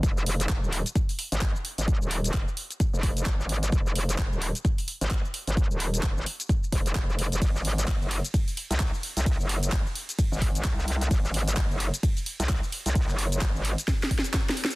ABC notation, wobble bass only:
X:1
M:4/4
L:1/16
Q:"Swing 16ths" 1/4=130
K:Fphr
V:1 name="Wobble bass" clef=bass
F,,,2 F,,,3 E,,,2 z4 A,,,2 z2 A,,,- | A,,, E,,,3 F,,, z4 F,,,3 A,,,2 A,,,2 | F,,,2 F,,,3 E,,,2 z4 A,,,2 z2 A,,,- | A,,, E,,,3 F,,, A,,, z4 F,,,2 F,,,3 F,,, |
A,,,2 A,,,3 G,,,2 z4 C,,2 z2 C,,- | C,, G,,,3 A,,, z4 A,,,3 C,,2 C,,2 | A,,,2 A,,,3 G,,,2 z4 C,,2 z2 C,,- | C,, G,,,3 A,,, A,,,2 z8 z |]